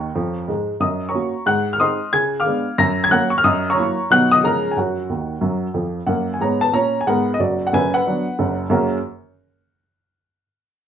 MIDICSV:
0, 0, Header, 1, 2, 480
1, 0, Start_track
1, 0, Key_signature, 6, "major"
1, 0, Tempo, 329489
1, 1180, Time_signature, 4, 2, 24, 8
1, 15844, End_track
2, 0, Start_track
2, 0, Title_t, "Upright piano"
2, 0, Program_c, 0, 0
2, 0, Note_on_c, 0, 73, 50
2, 0, Note_on_c, 0, 82, 55
2, 0, Note_on_c, 0, 85, 77
2, 222, Note_on_c, 0, 41, 60
2, 223, Note_on_c, 0, 53, 71
2, 461, Control_c, 0, 64, 127
2, 581, Note_off_c, 0, 41, 0
2, 582, Note_off_c, 0, 53, 0
2, 658, Note_off_c, 0, 73, 0
2, 658, Note_off_c, 0, 82, 0
2, 703, Note_on_c, 0, 44, 62
2, 706, Note_off_c, 0, 85, 0
2, 711, Note_on_c, 0, 56, 65
2, 722, Control_c, 0, 64, 0
2, 1062, Note_off_c, 0, 44, 0
2, 1067, Note_off_c, 0, 56, 0
2, 1169, Note_on_c, 0, 42, 61
2, 1176, Note_on_c, 0, 87, 70
2, 1194, Note_on_c, 0, 75, 58
2, 1427, Control_c, 0, 64, 127
2, 1544, Note_off_c, 0, 75, 0
2, 1561, Note_off_c, 0, 87, 0
2, 1581, Note_off_c, 0, 42, 0
2, 1584, Note_on_c, 0, 85, 61
2, 1593, Note_on_c, 0, 82, 52
2, 1596, Note_on_c, 0, 73, 50
2, 1666, Note_on_c, 0, 58, 35
2, 1670, Note_on_c, 0, 61, 45
2, 1677, Note_on_c, 0, 66, 43
2, 1679, Control_c, 0, 64, 0
2, 1928, Note_off_c, 0, 58, 0
2, 1931, Note_off_c, 0, 61, 0
2, 1937, Note_off_c, 0, 66, 0
2, 2115, Note_off_c, 0, 82, 0
2, 2117, Note_off_c, 0, 73, 0
2, 2129, Note_on_c, 0, 44, 77
2, 2136, Note_on_c, 0, 90, 88
2, 2150, Note_off_c, 0, 85, 0
2, 2155, Note_on_c, 0, 78, 75
2, 2388, Control_c, 0, 64, 127
2, 2504, Note_off_c, 0, 78, 0
2, 2521, Note_off_c, 0, 90, 0
2, 2521, Note_on_c, 0, 89, 82
2, 2542, Note_off_c, 0, 44, 0
2, 2613, Note_on_c, 0, 56, 45
2, 2618, Note_on_c, 0, 60, 43
2, 2618, Note_on_c, 0, 87, 87
2, 2619, Note_off_c, 0, 89, 0
2, 2623, Note_on_c, 0, 63, 54
2, 2630, Note_on_c, 0, 84, 64
2, 2636, Note_on_c, 0, 75, 64
2, 2639, Control_c, 0, 64, 0
2, 2879, Note_off_c, 0, 56, 0
2, 2882, Note_off_c, 0, 60, 0
2, 2886, Note_off_c, 0, 63, 0
2, 3072, Note_off_c, 0, 84, 0
2, 3075, Note_off_c, 0, 75, 0
2, 3099, Note_off_c, 0, 87, 0
2, 3100, Note_on_c, 0, 92, 96
2, 3107, Note_on_c, 0, 49, 72
2, 3122, Note_on_c, 0, 80, 65
2, 3358, Control_c, 0, 64, 127
2, 3468, Note_off_c, 0, 80, 0
2, 3483, Note_off_c, 0, 92, 0
2, 3492, Note_on_c, 0, 89, 82
2, 3501, Note_on_c, 0, 77, 66
2, 3501, Note_on_c, 0, 86, 67
2, 3512, Note_off_c, 0, 49, 0
2, 3586, Note_on_c, 0, 59, 42
2, 3588, Note_on_c, 0, 56, 48
2, 3592, Note_on_c, 0, 62, 43
2, 3593, Control_c, 0, 64, 0
2, 3848, Note_off_c, 0, 59, 0
2, 3850, Note_off_c, 0, 56, 0
2, 3853, Note_off_c, 0, 62, 0
2, 4029, Note_off_c, 0, 77, 0
2, 4029, Note_off_c, 0, 86, 0
2, 4055, Note_on_c, 0, 42, 83
2, 4055, Note_on_c, 0, 94, 111
2, 4064, Note_off_c, 0, 89, 0
2, 4073, Note_on_c, 0, 82, 88
2, 4317, Control_c, 0, 64, 127
2, 4423, Note_off_c, 0, 82, 0
2, 4427, Note_on_c, 0, 92, 102
2, 4441, Note_off_c, 0, 94, 0
2, 4465, Note_off_c, 0, 42, 0
2, 4528, Note_on_c, 0, 54, 53
2, 4532, Note_off_c, 0, 92, 0
2, 4534, Note_on_c, 0, 90, 99
2, 4540, Note_on_c, 0, 58, 59
2, 4541, Note_on_c, 0, 61, 60
2, 4546, Note_on_c, 0, 78, 88
2, 4554, Control_c, 0, 64, 0
2, 4795, Note_off_c, 0, 54, 0
2, 4804, Note_off_c, 0, 58, 0
2, 4805, Note_off_c, 0, 61, 0
2, 4810, Note_off_c, 0, 78, 0
2, 4813, Note_on_c, 0, 85, 89
2, 4823, Note_off_c, 0, 90, 0
2, 4916, Note_off_c, 0, 85, 0
2, 4922, Note_on_c, 0, 89, 112
2, 5011, Note_on_c, 0, 42, 79
2, 5013, Note_on_c, 0, 87, 99
2, 5019, Note_off_c, 0, 89, 0
2, 5032, Note_on_c, 0, 75, 73
2, 5263, Control_c, 0, 64, 127
2, 5383, Note_off_c, 0, 75, 0
2, 5390, Note_on_c, 0, 85, 92
2, 5400, Note_off_c, 0, 87, 0
2, 5400, Note_on_c, 0, 82, 82
2, 5414, Note_on_c, 0, 73, 69
2, 5423, Note_off_c, 0, 42, 0
2, 5492, Note_on_c, 0, 54, 51
2, 5507, Note_on_c, 0, 58, 58
2, 5508, Note_on_c, 0, 64, 48
2, 5521, Control_c, 0, 64, 0
2, 5758, Note_off_c, 0, 54, 0
2, 5769, Note_off_c, 0, 58, 0
2, 5770, Note_off_c, 0, 64, 0
2, 5937, Note_off_c, 0, 82, 0
2, 5945, Note_off_c, 0, 73, 0
2, 5973, Note_off_c, 0, 85, 0
2, 5980, Note_on_c, 0, 47, 81
2, 5982, Note_on_c, 0, 54, 57
2, 5982, Note_on_c, 0, 59, 49
2, 5996, Note_on_c, 0, 90, 127
2, 6003, Note_on_c, 0, 63, 55
2, 6003, Note_on_c, 0, 78, 85
2, 6231, Control_c, 0, 64, 127
2, 6245, Note_off_c, 0, 54, 0
2, 6245, Note_off_c, 0, 59, 0
2, 6258, Note_off_c, 0, 78, 0
2, 6260, Note_off_c, 0, 63, 0
2, 6274, Note_off_c, 0, 90, 0
2, 6287, Note_on_c, 0, 87, 109
2, 6307, Note_on_c, 0, 75, 76
2, 6388, Note_off_c, 0, 47, 0
2, 6461, Note_on_c, 0, 49, 78
2, 6468, Note_off_c, 0, 75, 0
2, 6470, Note_off_c, 0, 87, 0
2, 6476, Control_c, 0, 64, 0
2, 6476, Note_on_c, 0, 53, 36
2, 6479, Note_on_c, 0, 82, 96
2, 6481, Note_on_c, 0, 56, 49
2, 6493, Note_on_c, 0, 61, 47
2, 6494, Note_on_c, 0, 70, 77
2, 6704, Control_c, 0, 64, 127
2, 6735, Note_off_c, 0, 53, 0
2, 6739, Note_off_c, 0, 56, 0
2, 6747, Note_off_c, 0, 61, 0
2, 6834, Note_off_c, 0, 70, 0
2, 6852, Note_off_c, 0, 82, 0
2, 6868, Note_off_c, 0, 49, 0
2, 6869, Note_on_c, 0, 80, 65
2, 6943, Note_on_c, 0, 42, 51
2, 6952, Note_off_c, 0, 80, 0
2, 6953, Note_on_c, 0, 78, 53
2, 6957, Control_c, 0, 64, 0
2, 6972, Note_on_c, 0, 73, 43
2, 6976, Note_on_c, 0, 66, 55
2, 7191, Control_c, 0, 64, 127
2, 7349, Note_off_c, 0, 42, 0
2, 7427, Note_on_c, 0, 39, 50
2, 7429, Note_on_c, 0, 51, 49
2, 7435, Control_c, 0, 64, 0
2, 7784, Note_off_c, 0, 39, 0
2, 7785, Note_off_c, 0, 51, 0
2, 7880, Note_on_c, 0, 54, 57
2, 7884, Note_on_c, 0, 42, 58
2, 8247, Note_off_c, 0, 54, 0
2, 8249, Note_off_c, 0, 42, 0
2, 8337, Note_off_c, 0, 73, 0
2, 8339, Note_off_c, 0, 66, 0
2, 8365, Note_on_c, 0, 41, 54
2, 8373, Note_on_c, 0, 53, 53
2, 8385, Note_off_c, 0, 78, 0
2, 8730, Note_off_c, 0, 41, 0
2, 8735, Note_off_c, 0, 53, 0
2, 8836, Note_on_c, 0, 78, 71
2, 8840, Note_on_c, 0, 42, 59
2, 8863, Note_on_c, 0, 70, 53
2, 8869, Note_on_c, 0, 58, 54
2, 9115, Control_c, 0, 64, 127
2, 9217, Note_off_c, 0, 70, 0
2, 9230, Note_off_c, 0, 78, 0
2, 9231, Note_off_c, 0, 42, 0
2, 9232, Note_on_c, 0, 80, 64
2, 9249, Note_off_c, 0, 58, 0
2, 9331, Note_on_c, 0, 44, 60
2, 9333, Note_off_c, 0, 80, 0
2, 9344, Note_on_c, 0, 82, 72
2, 9350, Control_c, 0, 64, 0
2, 9354, Note_on_c, 0, 73, 68
2, 9356, Note_on_c, 0, 59, 57
2, 9613, Note_off_c, 0, 73, 0
2, 9628, Note_off_c, 0, 82, 0
2, 9632, Note_on_c, 0, 81, 95
2, 9647, Note_on_c, 0, 71, 54
2, 9718, Note_off_c, 0, 44, 0
2, 9733, Note_off_c, 0, 59, 0
2, 9798, Note_on_c, 0, 46, 57
2, 9812, Note_on_c, 0, 82, 95
2, 9816, Note_off_c, 0, 71, 0
2, 9821, Note_off_c, 0, 81, 0
2, 9826, Note_on_c, 0, 73, 72
2, 9834, Note_on_c, 0, 61, 70
2, 10179, Note_off_c, 0, 73, 0
2, 10190, Note_off_c, 0, 46, 0
2, 10198, Note_off_c, 0, 82, 0
2, 10209, Note_on_c, 0, 80, 75
2, 10212, Note_off_c, 0, 61, 0
2, 10300, Note_on_c, 0, 44, 74
2, 10302, Note_off_c, 0, 80, 0
2, 10303, Note_on_c, 0, 78, 83
2, 10321, Note_on_c, 0, 59, 65
2, 10321, Note_on_c, 0, 70, 56
2, 10667, Note_off_c, 0, 70, 0
2, 10683, Note_off_c, 0, 44, 0
2, 10684, Note_off_c, 0, 78, 0
2, 10693, Note_on_c, 0, 75, 79
2, 10696, Note_off_c, 0, 59, 0
2, 10765, Note_on_c, 0, 30, 55
2, 10769, Note_on_c, 0, 42, 51
2, 10778, Note_on_c, 0, 74, 59
2, 10784, Note_off_c, 0, 75, 0
2, 10784, Note_on_c, 0, 66, 51
2, 11017, Control_c, 0, 64, 127
2, 11138, Note_off_c, 0, 66, 0
2, 11154, Note_off_c, 0, 30, 0
2, 11157, Note_off_c, 0, 42, 0
2, 11162, Note_off_c, 0, 74, 0
2, 11168, Note_on_c, 0, 78, 82
2, 11258, Note_on_c, 0, 30, 65
2, 11261, Note_on_c, 0, 42, 63
2, 11262, Note_off_c, 0, 78, 0
2, 11277, Note_on_c, 0, 80, 105
2, 11280, Control_c, 0, 64, 0
2, 11288, Note_on_c, 0, 71, 71
2, 11541, Note_off_c, 0, 71, 0
2, 11554, Note_off_c, 0, 80, 0
2, 11565, Note_on_c, 0, 78, 90
2, 11580, Note_on_c, 0, 71, 68
2, 11643, Note_off_c, 0, 30, 0
2, 11644, Note_off_c, 0, 42, 0
2, 11752, Note_on_c, 0, 62, 47
2, 11763, Note_on_c, 0, 59, 44
2, 11764, Note_on_c, 0, 54, 50
2, 12013, Note_off_c, 0, 62, 0
2, 12020, Note_off_c, 0, 59, 0
2, 12021, Note_off_c, 0, 54, 0
2, 12216, Note_on_c, 0, 42, 55
2, 12220, Note_on_c, 0, 30, 72
2, 12465, Note_off_c, 0, 71, 0
2, 12516, Note_off_c, 0, 78, 0
2, 12601, Note_off_c, 0, 42, 0
2, 12604, Note_off_c, 0, 30, 0
2, 12669, Note_on_c, 0, 42, 70
2, 12677, Note_on_c, 0, 49, 60
2, 12677, Note_on_c, 0, 58, 55
2, 12687, Note_on_c, 0, 61, 65
2, 12689, Note_on_c, 0, 66, 53
2, 12691, Note_on_c, 0, 70, 67
2, 12706, Note_on_c, 0, 78, 53
2, 12882, Control_c, 0, 64, 127
2, 12986, Note_off_c, 0, 42, 0
2, 12990, Note_off_c, 0, 49, 0
2, 12990, Note_off_c, 0, 58, 0
2, 12996, Note_off_c, 0, 61, 0
2, 12996, Note_off_c, 0, 66, 0
2, 12998, Note_off_c, 0, 70, 0
2, 13006, Note_off_c, 0, 78, 0
2, 13064, Control_c, 0, 64, 0
2, 15844, End_track
0, 0, End_of_file